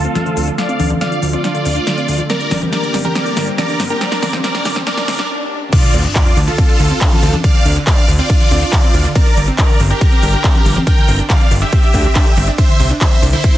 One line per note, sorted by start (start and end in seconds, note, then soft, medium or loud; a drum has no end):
0.00 5.69 D3 medium
0.00 2.26 F3 medium
0.00 2.26 A3 medium
0.00 0.50 F4 medium
0.00 2.26 F4 medium
0.00 0.50 A4 loud
0.00 2.26 A4 medium
0.00 riser medium
0.05 0.12 C4 medium
0.05 closed hi-hat soft
0.05 shaker soft
0.15 0.23 D4 medium
0.15 snare medium
0.15 closed hi-hat medium
0.15 high conga medium
0.15 shaker soft
0.26 0.30 D3 loud
0.26 closed hi-hat soft
0.26 shaker soft
0.37 0.50 D2 medium
0.37 0.44 C4 medium
0.37 open hi-hat loud
0.37 shaker medium
0.47 0.55 D4 medium
0.47 closed hi-hat soft
0.47 shaker soft
0.58 0.63 D3 loud
0.58 0.90 D5 medium
0.58 0.90 F5 loud
0.58 snare medium
0.58 closed hi-hat medium
0.58 shaker soft
0.69 0.76 C4 medium
0.69 closed hi-hat soft
0.69 shaker soft
0.79 0.93 D2 medium
0.79 0.87 D4 medium
0.79 open hi-hat loud
0.79 high conga medium
0.79 shaker medium
0.90 0.95 D3 loud
0.90 closed hi-hat soft
0.90 high conga medium
0.90 shaker soft
1.01 1.08 C4 medium
1.01 1.25 D5 medium
1.01 1.25 F5 loud
1.01 snare medium
1.01 closed hi-hat medium
1.01 shaker soft
1.12 1.19 D4 medium
1.12 closed hi-hat soft
1.12 shaker soft
1.22 1.36 D2 loud
1.22 1.27 D3 loud
1.22 open hi-hat loud
1.22 shaker medium
1.33 1.41 C4 medium
1.33 2.21 F4 medium
1.33 2.21 D5 loud
1.33 closed hi-hat soft
1.33 shaker soft
1.44 1.51 D4 medium
1.44 snare medium
1.44 closed hi-hat medium
1.44 shaker soft
1.55 1.59 D3 loud
1.55 closed hi-hat soft
1.55 shaker soft
1.65 1.79 D2 medium
1.65 1.73 C4 medium
1.65 open hi-hat loud
1.65 shaker medium
1.76 1.83 D4 medium
1.76 closed hi-hat soft
1.76 shaker soft
1.87 1.91 D3 loud
1.87 snare medium
1.87 closed hi-hat medium
1.87 shaker soft
1.97 2.05 C4 medium
1.97 closed hi-hat soft
1.97 shaker soft
2.08 2.21 D2 medium
2.08 2.16 D4 medium
2.08 open hi-hat loud
2.08 shaker medium
2.19 2.23 D3 loud
2.19 closed hi-hat soft
2.19 shaker soft
2.29 5.69 G3 medium
2.29 5.69 A#3 medium
2.29 2.37 C4 medium
2.29 5.69 G4 medium
2.29 2.61 A#4 medium
2.29 5.69 A#4 medium
2.29 2.61 D5 medium
2.29 snare medium
2.29 closed hi-hat medium
2.29 shaker soft
2.40 2.48 D4 medium
2.40 closed hi-hat soft
2.40 shaker soft
2.51 2.64 G1 loud
2.51 2.55 D3 medium
2.51 snare medium
2.51 open hi-hat loud
2.51 high conga medium
2.51 shaker medium
2.62 2.69 C4 medium
2.62 closed hi-hat soft
2.62 high conga medium
2.62 shaker soft
2.72 2.80 D4 medium
2.72 2.96 A#4 medium
2.72 2.96 D5 medium
2.72 snare medium
2.72 closed hi-hat medium
2.72 shaker soft
2.83 2.88 D3 medium
2.83 closed hi-hat soft
2.83 shaker soft
2.94 3.07 G1 loud
2.94 3.01 C4 medium
2.94 snare medium
2.94 open hi-hat loud
2.94 shaker medium
3.04 3.12 D4 medium
3.04 3.14 G4 medium
3.04 3.14 A#4 medium
3.04 closed hi-hat soft
3.04 high conga medium
3.04 shaker soft
3.15 3.23 C4 medium
3.15 3.47 A#4 medium
3.15 3.47 D5 loud
3.15 snare medium
3.15 closed hi-hat medium
3.15 shaker soft
3.26 3.33 D4 medium
3.26 closed hi-hat soft
3.26 shaker soft
3.37 3.50 G1 medium
3.37 3.41 D3 loud
3.37 snare medium
3.37 open hi-hat loud
3.37 shaker medium
3.47 3.55 C4 medium
3.47 closed hi-hat soft
3.47 shaker soft
3.58 3.65 D4 medium
3.58 3.82 A#4 medium
3.58 3.82 D5 medium
3.58 snare medium
3.58 closed hi-hat medium
3.58 high conga medium
3.58 shaker soft
3.69 3.73 D3 medium
3.69 closed hi-hat soft
3.69 shaker soft
3.79 3.93 G1 medium
3.79 3.87 C4 medium
3.79 snare medium
3.79 open hi-hat loud
3.79 shaker medium
3.90 3.98 D4 medium
3.90 3.99 G4 medium
3.90 3.99 A#4 medium
3.90 closed hi-hat soft
3.90 shaker soft
4.01 4.08 C4 medium
4.01 4.33 A#4 medium
4.01 4.33 D5 loud
4.01 snare medium
4.01 closed hi-hat medium
4.01 shaker soft
4.12 4.19 D4 medium
4.12 snare medium
4.12 closed hi-hat soft
4.12 shaker soft
4.22 4.36 G1 loud
4.22 4.27 D3 loud
4.22 snare medium
4.22 open hi-hat loud
4.22 high conga medium
4.22 shaker medium
4.33 4.40 C4 medium
4.33 snare medium
4.33 closed hi-hat soft
4.33 high conga medium
4.33 shaker soft
4.44 4.51 C4 medium
4.44 4.76 A#4 medium
4.44 4.76 D5 loud
4.44 snare medium
4.44 closed hi-hat medium
4.44 shaker soft
4.54 4.62 D4 medium
4.54 snare medium
4.54 closed hi-hat soft
4.54 shaker soft
4.65 4.78 G1 loud
4.65 4.70 D3 loud
4.65 snare loud
4.65 open hi-hat loud
4.65 shaker medium
4.76 4.83 C4 medium
4.76 snare medium
4.76 closed hi-hat soft
4.76 high conga medium
4.76 shaker soft
4.87 4.94 C4 medium
4.87 5.06 A#4 medium
4.87 5.06 D5 loud
4.87 snare loud
4.87 closed hi-hat medium
4.87 swell medium
4.87 shaker soft
4.97 5.05 D4 medium
4.97 snare medium
4.97 closed hi-hat soft
4.97 shaker soft
5.08 5.21 D2 loud
5.08 5.15 C4 medium
5.08 5.28 A#4 medium
5.08 5.28 D5 loud
5.08 snare loud
5.08 open hi-hat loud
5.08 shaker medium
5.19 5.26 D4 medium
5.19 snare medium
5.19 shaker soft
5.72 5.80 D4 medium
5.72 6.04 F4 medium
5.72 6.04 D5 loud
5.72 kick loud
5.72 closed hi-hat medium
5.72 crash loud
5.72 ride medium
5.72 sub drop medium
5.72 shaker soft
5.83 5.88 D3 loud
5.83 closed hi-hat soft
5.83 shaker soft
5.94 6.07 D2 loud
5.94 6.01 C4 medium
5.94 open hi-hat loud
5.94 shaker medium
6.05 6.12 D4 medium
6.05 closed hi-hat soft
6.05 shaker soft
6.15 6.20 D3 loud
6.15 6.39 F4 medium
6.15 6.39 D5 loud
6.15 kick loud
6.15 clap loud
6.15 closed hi-hat medium
6.15 ride medium
6.15 shaker soft
6.26 6.33 C4 medium
6.26 closed hi-hat soft
6.26 shaker soft
6.37 6.50 D2 loud
6.37 6.44 D4 medium
6.37 open hi-hat loud
6.37 shaker medium
6.47 6.52 D3 loud
6.47 7.35 F4 medium
6.47 7.35 A4 loud
6.47 closed hi-hat soft
6.47 shaker soft
6.58 6.66 C4 medium
6.58 kick loud
6.58 closed hi-hat medium
6.58 ride medium
6.58 shaker soft
6.69 6.76 D4 medium
6.69 closed hi-hat soft
6.69 shaker soft
6.80 6.93 D2 medium
6.80 6.84 D3 loud
6.80 open hi-hat loud
6.80 shaker medium
6.90 6.98 C4 medium
6.90 closed hi-hat soft
6.90 shaker soft
7.01 kick loud
7.01 clap loud
7.01 closed hi-hat medium
7.01 ride medium
7.01 shaker soft
7.12 7.16 D3 loud
7.12 closed hi-hat soft
7.12 high conga medium
7.12 shaker soft
7.23 7.36 D2 medium
7.23 7.30 C4 medium
7.23 open hi-hat loud
7.23 shaker medium
7.33 7.41 D4 medium
7.33 closed hi-hat soft
7.33 high conga medium
7.33 shaker soft
7.44 7.48 D3 loud
7.44 7.76 D5 medium
7.44 7.76 F5 loud
7.44 kick loud
7.44 closed hi-hat medium
7.44 ride medium
7.44 shaker soft
7.55 7.62 C4 medium
7.55 closed hi-hat soft
7.55 shaker soft
7.65 7.79 D2 loud
7.65 7.73 D4 medium
7.65 open hi-hat loud
7.65 shaker medium
7.76 7.81 D3 loud
7.76 closed hi-hat soft
7.76 shaker soft
7.87 7.94 C4 medium
7.87 8.11 D5 medium
7.87 8.11 F5 medium
7.87 kick loud
7.87 clap loud
7.87 closed hi-hat medium
7.87 ride medium
7.87 shaker soft
7.98 8.05 D4 medium
7.98 closed hi-hat soft
7.98 shaker soft
8.08 8.21 D2 loud
8.08 8.13 D3 loud
8.08 open hi-hat loud
8.08 shaker medium
8.19 8.26 C4 medium
8.19 9.07 F4 medium
8.19 9.07 D5 loud
8.19 closed hi-hat soft
8.19 shaker soft
8.30 8.37 D4 medium
8.30 kick loud
8.30 closed hi-hat medium
8.30 ride medium
8.30 shaker soft
8.41 8.45 D3 loud
8.41 closed hi-hat soft
8.41 shaker soft
8.51 8.64 D2 medium
8.51 8.58 C4 medium
8.51 open hi-hat loud
8.51 shaker medium
8.62 8.69 D4 medium
8.62 closed hi-hat soft
8.62 shaker soft
8.73 8.77 D3 loud
8.73 kick loud
8.73 clap loud
8.73 closed hi-hat medium
8.73 ride medium
8.73 shaker soft
8.83 8.91 C4 medium
8.83 closed hi-hat soft
8.83 shaker soft
8.94 9.07 D2 medium
8.94 9.01 D4 medium
8.94 open hi-hat loud
8.94 shaker medium
9.05 9.09 D3 loud
9.05 closed hi-hat soft
9.05 shaker soft
9.15 9.23 C4 medium
9.15 9.47 A#4 medium
9.15 9.47 D5 loud
9.15 kick loud
9.15 closed hi-hat medium
9.15 ride medium
9.15 shaker soft
9.26 9.34 D4 medium
9.26 closed hi-hat soft
9.26 shaker soft
9.37 9.50 G1 loud
9.37 9.41 D3 loud
9.37 open hi-hat loud
9.37 shaker medium
9.48 9.55 C4 medium
9.48 closed hi-hat soft
9.48 shaker soft
9.58 9.66 D4 medium
9.58 9.82 A#4 medium
9.58 9.82 D5 medium
9.58 kick loud
9.58 clap loud
9.58 closed hi-hat medium
9.58 ride medium
9.58 shaker soft
9.69 9.73 D3 loud
9.69 closed hi-hat soft
9.69 shaker soft
9.80 9.93 G1 loud
9.80 9.87 C4 medium
9.80 open hi-hat loud
9.80 shaker medium
9.90 9.98 D4 medium
9.90 10.78 G4 medium
9.90 10.78 A#4 loud
9.90 closed hi-hat soft
9.90 shaker soft
10.01 10.06 D3 loud
10.01 kick loud
10.01 closed hi-hat medium
10.01 ride medium
10.01 shaker soft
10.12 10.19 C4 medium
10.12 closed hi-hat soft
10.12 shaker soft
10.23 10.36 G1 medium
10.23 10.30 D4 medium
10.23 open hi-hat loud
10.23 shaker medium
10.33 10.38 D3 loud
10.33 closed hi-hat soft
10.33 shaker soft
10.44 10.51 C4 medium
10.44 kick loud
10.44 clap loud
10.44 closed hi-hat medium
10.44 ride medium
10.44 shaker soft
10.55 10.62 D4 medium
10.55 closed hi-hat soft
10.55 high conga medium
10.55 shaker soft
10.65 10.79 G1 medium
10.65 10.70 D3 loud
10.65 open hi-hat loud
10.65 shaker medium
10.76 10.83 C4 medium
10.76 closed hi-hat soft
10.76 high conga medium
10.76 shaker soft
10.87 10.94 D4 medium
10.87 11.19 A#4 medium
10.87 11.19 G5 loud
10.87 kick loud
10.87 closed hi-hat medium
10.87 ride medium
10.87 shaker soft
10.98 11.02 D3 loud
10.98 closed hi-hat soft
10.98 shaker soft
11.08 11.21 G1 loud
11.08 11.16 C4 medium
11.08 open hi-hat loud
11.08 shaker medium
11.19 11.26 D4 medium
11.19 closed hi-hat soft
11.19 shaker soft
11.30 11.34 D3 loud
11.30 11.53 D5 medium
11.30 11.53 F5 loud
11.30 kick loud
11.30 clap loud
11.30 closed hi-hat medium
11.30 ride medium
11.30 shaker soft
11.40 11.48 C4 medium
11.40 closed hi-hat soft
11.40 shaker soft
11.51 11.64 G1 loud
11.51 11.58 D4 medium
11.51 open hi-hat loud
11.51 shaker medium
11.62 11.66 D3 loud
11.62 12.50 G4 medium
11.62 12.50 E5 loud
11.62 closed hi-hat soft
11.62 shaker soft
11.72 11.80 C4 medium
11.72 kick loud
11.72 closed hi-hat medium
11.72 ride medium
11.72 shaker soft
11.83 11.91 D4 medium
11.83 closed hi-hat soft
11.83 shaker soft
11.94 12.07 D2 loud
11.94 11.98 D3 loud
11.94 kick medium
11.94 open hi-hat loud
11.94 shaker medium
12.05 12.12 C4 medium
12.05 closed hi-hat soft
12.05 shaker soft
12.15 12.23 D4 medium
12.15 kick loud
12.15 clap loud
12.15 closed hi-hat medium
12.15 ride medium
12.15 shaker soft
12.26 12.30 D3 loud
12.26 closed hi-hat soft
12.26 shaker soft
12.37 12.50 G1 medium
12.37 12.44 C4 medium
12.37 open hi-hat loud
12.37 shaker medium
12.48 12.55 D4 medium
12.48 closed hi-hat soft
12.48 shaker soft
12.58 12.66 D4 medium
12.58 12.90 C5 medium
12.58 12.90 E5 loud
12.58 kick loud
12.58 closed hi-hat medium
12.58 ride medium
12.58 shaker soft
12.69 12.73 D3 loud
12.69 closed hi-hat soft
12.69 shaker soft
12.80 12.93 C2 loud
12.80 12.87 C4 medium
12.80 open hi-hat loud
12.80 shaker medium
12.91 12.98 D4 medium
12.91 closed hi-hat soft
12.91 shaker soft
13.01 13.06 D3 loud
13.01 13.25 C5 medium
13.01 13.25 E5 loud
13.01 kick loud
13.01 clap loud
13.01 closed hi-hat medium
13.01 ride medium
13.01 shaker soft
13.12 13.19 C4 medium
13.12 closed hi-hat soft
13.12 shaker soft
13.23 13.36 C2 loud
13.23 13.30 D4 medium
13.23 open hi-hat loud
13.23 shaker medium
13.33 13.38 D3 loud
13.33 13.58 E4 medium
13.33 13.58 C5 loud
13.33 closed hi-hat soft
13.33 shaker soft
13.44 13.51 C4 medium
13.44 kick loud
13.44 closed hi-hat medium
13.44 ride medium
13.44 shaker soft
13.55 13.58 D4 medium
13.55 closed hi-hat soft
13.55 shaker soft